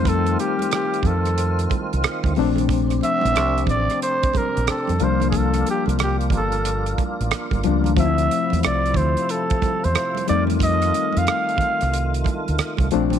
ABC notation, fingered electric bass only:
X:1
M:4/4
L:1/16
Q:"Swing 16ths" 1/4=91
K:F
V:1 name="Fingered electric bass" clef=bass
F,,2 z4 F,,4 z C,, z D,, B,,,2- | B,,,2 z B,,, C,,2 A,,, z4 B,,, z F,, C,,2- | C,,2 z C,,3 G,,,4 z A,,, z G,,, ^C,,2 | D,,2 z E,, C,,2 D,, z4 E,, z2 F,,2- |
F,,2 z F,, z3 C,,3 z D,, z C,, B,,,2 |]